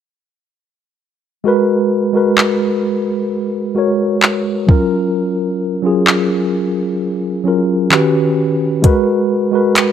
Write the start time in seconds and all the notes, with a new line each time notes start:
1.44 G#3 F#4 A#4 B4
2.13 G#3 F#4 A#4 B4
2.38 clap
3.75 G#3 F#4 A#4 C#5
4.22 clap
4.67 F#3 C#4 F4 A#4, kick
5.82 F#3 C#4 F4 G#4
6.07 clap
7.44 F#3 C#4 F4 A#4
7.90 D#3 C#4 F#4 G4 B4, clap
8.82 G#3 F#4 A#4 B4, kick, closed hi-hat
9.52 G#3 F#4 A#4 B4
9.76 clap, closed hi-hat